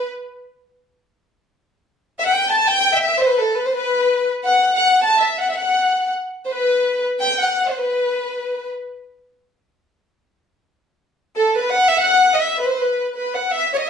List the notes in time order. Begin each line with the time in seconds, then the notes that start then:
2.19 E5
2.25 F#5
2.34 G5
2.51 A5
2.66 G5
2.94 E5
3.02 E5
3.21 C5
3.30 B4
3.38 A4
3.57 B4
3.65 C5
3.74 B4
4.44 F#5
4.74 F#5
5.04 A5
5.18 E5
5.38 F#5
5.50 E5
5.56 F#5
6.44 C5
6.51 B4
7.20 G5
7.40 F#5
7.68 C5
7.75 B4
11.36 A4
11.56 B4
11.71 F#5
11.89 E5
11.96 F#5
12.35 D#5
12.41 E5
12.60 B4
12.69 C5
12.80 B4
13.15 B4
13.35 F#5
13.52 E5
13.73 C#5
13.79 D#5